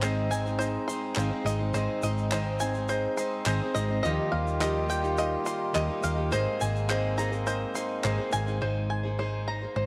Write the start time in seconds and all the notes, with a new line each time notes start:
Already playing: G#1 G#2 G#3 C4 D#4 C5 D#5
0.02 G#2 D#3 G#3 C4 D#4 C5 D#5, clap, shaker
0.31 C4 D#4 C5 G#5, shaker
0.46 G#3 C4 D#4 C5, shaker
0.59 G#3 C4 D#4 C5 D#5, shaker
0.88 G#3 C4 D#4 C5 C6, shaker
1.15 G#1 G#2 D#3 G#3 C4 D#4 C5 F5, clap, shaker
1.30 G#3 C4 D#4 C5
1.44 G#1 G#3 C4 D#4 C5 D#5, shaker
1.59 G#3 C4 D#4 C5
1.74 G#1 G#2 D#3 G#3 C4 D#4 C5 D#5, shaker
2.03 G#1 G#3 C4 D#4 D#5, shaker
2.07 C5
2.18 shaker
2.31 G#2 D#3 G#3 C4 D#4 C5 D#5, clap, shaker
2.60 G#3 C4 D#4 C5 G#5, shaker
2.74 G#3 C4 D#4 C5, shaker
2.89 G#3 C4 D#4 C5 D#5, shaker
3.17 G#3 C4 D#4 C5 D#5 C6, shaker
3.46 G#1 G#2 D#3 G#3 C4 D#4 C5 D#5 G#5, clap, shaker
3.61 G#3 C4 D#4 C5
3.75 G#1 G#3 C4 D#4 C5 D#5, shaker
3.89 G#3 C4 D#4 C5
4.03 D#2 D#3 F3 G3 A#3 D#4 F4 G4 A#4 D#5, shaker
4.30 D#2 A#3 D#4 G4 D#5 F5
4.47 shaker
4.59 D#3 F3 G3 A#3 D#4 F4 G4 A#4 D#5, clap, shaker
4.86 A#3 D#4 G4 D#5 G5, shaker
5.02 A#3 D#4 G4 D#5, shaker
5.18 G3 D#4 F4 A#4 D#5 F5, shaker
5.44 A#3 D#4 G4 D#5 C6, shaker
5.73 D#2 D#3 F3 G3 A#3 D#4 F4 G4 A#4 D#5, clap, shaker
5.88 A#3 D#4 G4 D#5
6.01 D#2 A#3 D#4 G4 D#5 F5, shaker
6.16 A#3 D#4 G4 D#5
6.30 G#1 G#2 G#3 A#3 C4 D#4 G#4 A#4 C5 D#5, shaker
6.59 G#1 A#3 D#4 G#4 C5 G#5, shaker
6.76 shaker
6.88 G#2 G#3 A#3 C4 D#4 G#4 A#4 C5 D#5, clap, shaker
7.17 A#3 D#4 G#4 C5 A#5, shaker
7.32 A#3 D#4 G#4 C5, shaker
7.46 G#3 C4 D#4 A#4 C5 D#5, shaker
7.74 A#3 D#4 G#4 C5 C6, shaker
8.03 G#1 G#2 G#3 A#3 C4 D#4 G#4 A#4 C5 D#5, clap, shaker
8.18 A#3 D#4 G#4 C5
8.31 G#1 A#3 D#4 G#4 C5 G#5, shaker
8.46 A#3 D#4 G#4 C5, shaker
8.60 G#1 G#2 G#3 A#3 D#4 G#4 C5
8.90 G#5
9.03 A#3 D#4 G#4 C5
9.18 G#2 G#3 A#3 D#4 G#4 C5
9.47 A#3 D#4 G#4 C5 A#5
9.62 A#3 D#4 G#4 C5
9.75 G#1 A#3 D#4 G#4 C5